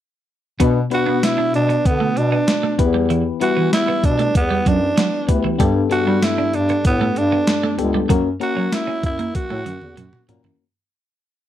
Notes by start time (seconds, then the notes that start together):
0.60 B2 B3 D4 F#4 B4, kick, closed hi-hat
0.90 B3 D4 F#4 B4, muted clean electric guitar stroke, closed hi-hat
1.06 B3 D4
1.23 E4, snare, closed hi-hat
1.38 D4
1.54 B2 D4, muted clean electric guitar stroke, closed hi-hat
1.69 B3, closed hi-hat
1.85 D3 B3, kick, closed hi-hat
2.00 A3
2.16 B2 D4, muted clean electric guitar stroke, closed hi-hat
2.32 B3
2.48 snare, closed hi-hat
2.63 A3
2.78 E2 E3 B3 E4 G4 B4, muted clean electric guitar stroke, kick, closed hi-hat
2.94 G3
3.10 E3, closed hi-hat
3.40 G3 B3 E4 F#4 B4, muted clean electric guitar stroke, closed hi-hat
3.57 E3 B3
3.73 E4, snare, closed hi-hat
3.88 B3
4.04 B2 D4, muted clean electric guitar stroke, kick, closed hi-hat
4.19 A3, closed hi-hat
4.35 E2 B3, muted clean electric guitar stroke, kick, closed hi-hat
4.50 G3
4.66 F#2 F#3 D4, kick, closed hi-hat
4.97 F#3, snare, closed hi-hat
5.28 D2 B3 E4 G4 B4, muted clean electric guitar stroke, kick, closed hi-hat
5.44 E3
5.58 G2 G3 B3 D4 G4 A4, kick, closed hi-hat
5.90 G3 B3 D4 F#4 A4, muted clean electric guitar stroke, closed hi-hat
6.06 G3 D4
6.22 E4, snare, closed hi-hat
6.38 D4
6.53 G2 D4, muted clean electric guitar stroke, closed hi-hat
6.69 B3, closed hi-hat
6.85 A2 B3, kick, closed hi-hat
7.01 A3
7.16 G2 D4, muted clean electric guitar stroke, closed hi-hat
7.32 B3
7.47 snare, closed hi-hat
7.63 A3
7.78 C#2 B3 D4 G4 A4, muted clean electric guitar stroke, closed hi-hat
7.94 G3
8.09 F#2 F#3 A#3 C#4 F#4 A#4, kick, closed hi-hat
8.40 A#3 C#4 F#4 A#4, muted clean electric guitar stroke, closed hi-hat
8.56 F#3 C#4
8.72 E4, snare, closed hi-hat
8.87 C#4
9.03 F#2 E4, muted clean electric guitar stroke, kick, closed hi-hat
9.19 A#3, closed hi-hat
9.35 F#4, muted clean electric guitar stroke, kick, closed hi-hat, high tom
9.50 A2 A3, high tom
9.66 F#2 F#3, closed hi-hat, mid tom
9.81 E2, mid tom
9.97 F#2 F#3, closed hi-hat, mid tom
10.13 mid tom
10.28 A#2 A#3 C#4 F#4 A#4, muted clean electric guitar stroke, closed hi-hat, floor tom
10.44 F#2 E3, floor tom